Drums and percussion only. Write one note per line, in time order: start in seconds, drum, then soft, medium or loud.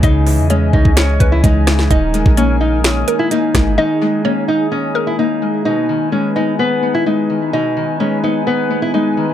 0.03 kick loud
0.03 closed hi-hat medium
0.27 open hi-hat medium
0.50 closed hi-hat medium
0.73 kick loud
0.85 kick medium
0.97 finger snap medium
0.97 snare loud
0.97 closed hi-hat medium
1.20 kick loud
1.20 closed hi-hat medium
1.44 kick loud
1.44 closed hi-hat medium
1.67 finger snap medium
1.67 cross-stick medium
1.67 snare medium
1.67 closed hi-hat medium
1.79 snare medium
1.91 kick loud
1.91 closed hi-hat medium
2.14 closed hi-hat medium
2.26 kick loud
2.37 closed hi-hat medium
2.84 finger snap loud
2.84 snare loud
2.84 closed hi-hat medium
3.08 closed hi-hat medium
3.31 closed hi-hat medium
3.55 finger snap medium
3.55 kick medium
3.55 cross-stick medium
3.55 snare medium
3.55 closed hi-hat medium